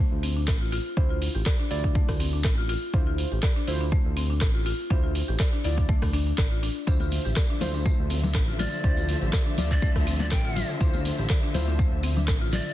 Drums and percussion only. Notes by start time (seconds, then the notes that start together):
0.23 open hi-hat
0.48 kick, cross-stick, clap
0.73 open hi-hat
0.97 kick
1.22 open hi-hat
1.46 kick, cross-stick, clap
1.71 open hi-hat
1.84 kick
1.95 kick
2.09 kick, cross-stick, open hi-hat
2.20 open hi-hat
2.44 kick, cross-stick, clap
2.69 open hi-hat
2.94 kick
3.18 open hi-hat
3.43 kick, cross-stick, clap
3.67 open hi-hat
3.92 kick
4.17 open hi-hat
4.41 kick, cross-stick, clap
4.66 open hi-hat
4.91 kick
5.15 open hi-hat
5.40 kick, cross-stick, clap
5.64 open hi-hat
5.78 kick
5.89 kick
6.02 kick, cross-stick, open hi-hat
6.14 open hi-hat
6.38 kick, cross-stick, clap
6.63 open hi-hat
6.87 kick, tambourine
7.00 tambourine, muted conga
7.12 open hi-hat, tambourine, high conga
7.25 tambourine
7.36 kick, cross-stick, clap, tambourine, muted conga
7.61 open hi-hat, tambourine, high conga, low conga
7.74 tambourine, muted conga
7.85 kick, tambourine, high conga
8.10 open hi-hat, tambourine, muted conga, high conga
8.24 tambourine, low conga
8.34 kick, cross-stick, clap, tambourine
8.59 open hi-hat, tambourine, muted conga, high conga, low conga
8.72 tambourine
8.84 kick, tambourine
8.97 tambourine, muted conga
9.09 open hi-hat, tambourine, high conga
9.22 tambourine
9.33 kick, cross-stick, clap, tambourine, muted conga
9.58 open hi-hat, tambourine, high conga, low conga
9.71 kick, tambourine, muted conga
9.82 kick, tambourine, high conga
9.96 kick, cross-stick, open hi-hat
10.07 open hi-hat, tambourine, muted conga
10.20 tambourine, high conga, low conga
10.31 kick, cross-stick, clap, tambourine, low conga
10.56 open hi-hat, tambourine, muted conga, high conga, low conga
10.69 tambourine
10.81 kick, tambourine
10.93 tambourine, muted conga
11.05 open hi-hat, tambourine, high conga
11.18 tambourine
11.30 kick, cross-stick, clap, tambourine, muted conga
11.54 open hi-hat, tambourine, high conga, low conga
11.68 tambourine, muted conga
11.79 kick, tambourine, high conga
12.03 open hi-hat, tambourine, muted conga, high conga
12.16 tambourine, low conga
12.28 kick, cross-stick, clap, tambourine
12.52 open hi-hat, tambourine, muted conga, high conga, low conga
12.66 tambourine